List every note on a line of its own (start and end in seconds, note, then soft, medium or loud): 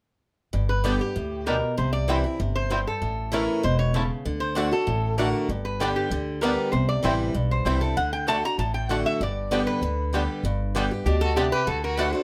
0.53 0.98 G1 medium
0.53 1.12 G2 medium
0.69 0.98 B4 medium
0.84 0.99 D3 medium
0.84 1.00 G3 loud
0.84 0.92 G3 medium
0.84 0.93 B3 medium
0.84 1.00 B3 loud
0.84 0.92 B3 medium
0.84 0.92 D4 medium
0.84 0.94 G4 medium
0.84 0.98 G4 loud
0.84 0.94 D5 medium
0.84 0.94 G5 loud
0.99 1.15 B3 soft
0.99 1.14 G4 medium
0.99 1.44 G4 medium
1.16 1.61 D2 medium
1.16 1.45 A2 medium
1.46 1.76 B2 medium
1.46 1.54 G3 medium
1.46 1.56 B3 medium
1.46 1.54 B3 medium
1.46 1.54 D4 medium
1.46 1.56 G4 medium
1.46 1.76 A#4 medium
1.46 1.56 D5 medium
1.46 1.56 G5 medium
1.77 2.23 C2 medium
1.77 2.37 C3 medium
1.77 1.92 C5 medium
1.93 2.08 D5 loud
2.08 2.23 E3 medium
2.08 2.24 G3 medium
2.08 2.16 G3 medium
2.08 2.18 C4 medium
2.08 2.24 C4 loud
2.08 2.16 C4 medium
2.08 2.18 E4 medium
2.08 2.16 E4 medium
2.08 2.23 E4 loud
2.08 2.18 C5 medium
2.08 2.18 G5 loud
2.24 2.40 C4 soft
2.24 2.39 E4 medium
2.40 2.84 G1 medium
2.40 2.69 C3 medium
2.55 2.84 C5 medium
2.70 3.00 G2 medium
2.70 2.78 G3 medium
2.70 2.80 C4 medium
2.70 2.78 C4 medium
2.70 2.80 E4 medium
2.70 2.78 E4 medium
2.70 2.80 C5 medium
2.70 2.80 G5 medium
2.87 3.30 A4 medium
3.01 3.46 A1 medium
3.01 3.61 A2 medium
3.32 3.62 E3 loud
3.32 3.42 A3 medium
3.32 3.62 A3 loud
3.32 3.40 A3 medium
3.32 3.62 C#4 medium
3.32 3.40 C#4 medium
3.32 3.42 E4 loud
3.32 3.63 E4 loud
3.32 3.40 E4 medium
3.32 3.62 A#4 medium
3.32 3.42 C#5 medium
3.32 3.42 A5 medium
3.63 4.09 E1 medium
3.63 3.93 B2 medium
3.63 3.78 C5 medium
3.79 3.94 C#5 loud
3.94 4.24 C#3 medium
3.94 4.04 A3 medium
3.94 4.02 A3 medium
3.94 4.02 C#4 medium
3.94 4.04 E4 medium
3.94 4.02 E4 medium
3.94 4.04 C#5 medium
3.94 4.04 A5 loud
4.25 4.70 D2 medium
4.25 4.54 D3 medium
4.40 4.70 C5 medium
4.55 4.71 D3 medium
4.55 4.65 A3 medium
4.55 4.72 A3 loud
4.55 4.64 A3 medium
4.55 4.72 D4 loud
4.55 4.60 D4 medium
4.55 4.65 F#4 medium
4.55 4.70 F#4 loud
4.55 4.66 D5 medium
4.55 4.66 F#5 medium
4.71 4.87 D4 soft
4.71 4.86 F#4 medium
4.71 5.15 A4 medium
4.87 5.32 A1 medium
4.87 5.46 A2 medium
5.17 5.48 D3 medium
5.17 5.27 A3 medium
5.17 5.48 A3 medium
5.17 5.26 A3 medium
5.17 5.48 D4 medium
5.17 5.21 D4 medium
5.17 5.28 F#4 medium
5.17 5.48 F#4 loud
5.17 5.47 A#4 medium
5.17 5.28 D5 medium
5.17 5.28 F#5 medium
5.49 5.93 G1 medium
5.49 6.08 G2 medium
5.65 5.94 B4 medium
5.80 6.10 D3 medium
5.80 6.10 G3 loud
5.80 5.88 G3 medium
5.80 5.89 B3 medium
5.80 5.88 B3 medium
5.80 6.10 B3 medium
5.80 5.88 D4 medium
5.80 5.90 G4 loud
5.80 6.11 G4 loud
5.80 5.90 D5 medium
5.80 5.90 G5 loud
5.96 6.39 G4 medium
6.11 6.55 D2 medium
6.11 6.40 D3 medium
6.41 6.71 D3 medium
6.41 6.72 G3 loud
6.41 6.50 G3 medium
6.41 6.51 B3 medium
6.41 6.72 B3 loud
6.41 6.50 B3 medium
6.41 6.50 D4 medium
6.41 6.51 G4 medium
6.41 6.72 G4 loud
6.41 6.71 A#4 medium
6.41 6.52 D5 medium
6.41 6.52 G5 medium
6.72 6.95 C2 medium
6.72 7.32 C3 medium
6.72 6.88 C5 medium
6.89 7.03 D5 medium
7.03 7.30 A1 medium
7.03 7.33 E3 medium
7.03 7.33 G3 loud
7.03 7.11 G3 medium
7.03 7.13 C4 loud
7.03 7.33 C4 medium
7.03 7.11 C4 medium
7.03 7.13 E4 medium
7.03 7.34 E4 loud
7.03 7.12 E4 medium
7.03 7.14 C5 loud
7.03 7.14 G5 loud
7.34 7.61 B1 medium
7.34 7.94 G2 medium
7.51 7.80 C5 medium
7.65 7.92 C2 medium
7.65 7.81 E3 medium
7.65 7.81 G3 medium
7.65 7.73 G3 medium
7.65 7.75 C4 medium
7.65 7.73 C4 medium
7.65 7.82 C4 loud
7.65 7.75 E4 medium
7.65 7.73 E4 medium
7.65 7.81 E4 medium
7.65 7.75 C5 medium
7.65 7.75 G5 medium
7.81 7.97 C4 soft
7.81 7.96 E4 medium
7.81 7.95 A4 medium
7.97 8.41 D2 medium
7.97 8.26 D3 medium
7.97 8.12 F#5 medium
8.13 8.27 G5 medium
8.27 8.43 D3 medium
8.27 8.36 A3 medium
8.27 8.43 A3 loud
8.27 8.35 A3 medium
8.27 8.44 D4 loud
8.27 8.31 D4 medium
8.27 8.37 F#4 medium
8.27 8.43 F#4 loud
8.27 8.37 D5 loud
8.27 8.37 F#5 loud
8.27 8.43 A5 loud
8.44 8.59 D4 soft
8.44 8.58 F#4 soft
8.44 8.58 A#5 loud
8.58 9.03 A1 medium
8.58 9.18 A2 medium
8.58 8.74 A5 medium
8.74 8.90 G5 medium
8.89 9.19 D3 medium
8.89 8.99 A3 medium
8.89 9.19 A3 medium
8.89 8.97 A3 medium
8.89 9.20 D4 loud
8.89 8.93 D4 medium
8.89 8.99 F#4 medium
8.89 9.20 F#4 medium
8.89 8.99 D5 medium
8.89 9.05 F#5 medium
8.89 8.99 F#5 medium
9.06 9.20 E5 medium
9.20 9.65 G1 medium
9.20 9.79 G2 medium
9.20 9.65 D5 medium
9.51 9.81 D3 medium
9.51 9.81 G3 medium
9.51 9.59 G3 medium
9.51 9.61 B3 loud
9.51 9.81 B3 loud
9.51 9.59 B3 medium
9.51 9.59 D4 medium
9.51 9.61 G4 medium
9.51 9.82 G4 loud
9.51 9.61 D5 loud
9.51 9.61 G5 loud
9.67 10.32 B4 medium
9.82 10.26 D2 loud
9.82 10.11 D3 medium
10.13 10.42 D3 medium
10.13 10.43 G3 medium
10.13 10.21 G3 medium
10.13 10.22 B3 medium
10.13 10.21 B3 medium
10.13 10.43 B3 medium
10.13 10.21 D4 medium
10.13 10.23 G4 medium
10.13 10.43 G4 medium
10.13 10.23 D5 medium
10.13 10.23 G5 loud
10.43 10.88 G1 medium
10.43 11.03 G2 medium
10.75 10.90 D3 medium
10.75 10.90 G3 medium
10.75 10.82 G3 medium
10.75 10.84 B3 medium
10.75 10.91 B3 loud
10.75 10.83 B3 medium
10.75 10.83 D4 medium
10.75 10.84 G4 loud
10.75 10.90 G4 loud
10.75 10.85 D5 loud
10.75 10.85 G5 loud
10.91 11.06 B3 soft
10.91 11.05 G4 medium
11.05 11.50 D2 medium
11.05 11.35 B2 medium
11.05 11.20 D4 medium
11.05 11.21 G4 medium
11.21 11.35 F#4 medium
11.21 11.36 A4 loud
11.36 11.66 C3 loud
11.36 11.44 G3 medium
11.36 11.46 B3 medium
11.36 11.44 B3 medium
11.36 11.51 D4 medium
11.36 11.44 D4 medium
11.36 11.52 G4 medium
11.36 11.46 G4 medium
11.36 11.46 D5 medium
11.36 11.46 G5 loud
11.52 11.65 G4 medium
11.52 11.67 B4 loud
11.66 12.12 D2 medium
11.66 11.96 D3 medium
11.66 11.81 F#4 medium
11.66 11.83 A4 medium
11.83 11.97 F#4 medium
11.83 11.99 A#4 medium
11.97 12.13 D3 loud
11.97 12.07 A3 loud
11.97 12.14 A3 medium
11.97 12.06 A3 medium
11.97 12.13 D4 loud
11.97 12.02 D4 medium
11.97 12.13 F#4 medium
11.97 12.07 F#4 loud
11.97 12.11 F#4 loud
11.97 12.13 B4 medium
11.97 12.07 D5 loud
11.97 12.08 F#5 loud
12.12 12.23 D4 medium
12.12 12.23 F#4 medium
12.12 12.23 A4 medium
12.12 12.23 C5 medium